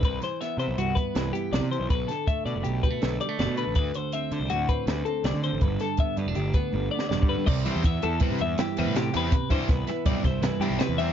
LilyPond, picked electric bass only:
\new Staff \with { instrumentName = "Picked electric bass" } { \clef bass \time 5/4 \key c \lydian \tempo 4 = 162 c,8 r4 c16 b,,16 c,8 r8 c,8 r8 b,,16 c8 b,,16 | b,,8 r4 b,16 fis,,16 b,,8 r8 b,,8 r8 fis,,16 b,8 a,,16 | d,8 r4 d16 c,16 d,8 r8 d,8 r8 c,16 d8 a,,16 | g,,8 r4 g,16 e,,16 g,,8 r8 g,,8 r8 e,,16 g,8 g,16 |
c,8. e,8. e,8 r16 c16 e,8 r8 e,16 a,8. e,8 | r8 g,16 r16 c,8 r8 b,,16 r16 c,8 c,16 r16 g,16 b,,16 r16 e,8. | }